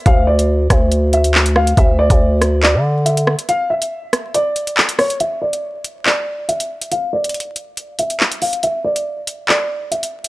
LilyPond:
<<
  \new Staff \with { instrumentName = "Grand piano" } { \time 4/4 \key d \minor \tempo 4 = 140 f''8 d''2 e''4 f''8 | e''8 d''4. d''4 e''4 | f''8 e''4. d''4. cis''8 | e''8 d''4. d''4 e''4 |
f''8 d''2 e''4 f''8 | e''8 d''4. d''4 e''4 | }
  \new Staff \with { instrumentName = "808-style bass" } { \clef bass \time 4/4 \key d \minor d,4. d,2~ d,8 | d,8. d,4. d4. r16 | r1 | r1 |
r1 | r1 | }
  \new DrumStaff \with { instrumentName = "Drums" } \drummode { \time 4/4 <hh bd>8. hh16 r8 <hh bd ss>8 hh8 hh16 hh16 hc16 hh16 ss16 hh16 | <hh bd>8. <hh bd>16 r8 <hh ss>8 hc4 hh16 hh16 ss16 hh16 | hh8. hh16 r8 <hh ss>8 hh8 hh16 hh16 hc16 hh16 <hho ss>16 hh16 | hh8. hh16 r8 hh8 hc4 hh16 hh8 hh16 |
hh8. hh32 hh32 hh32 hh16. hh8 hh8 hh16 hh16 hc16 hh16 hho16 hh16 | hh8. hh16 r8 hh8 hc4 hh16 hh8 hh16 | }
>>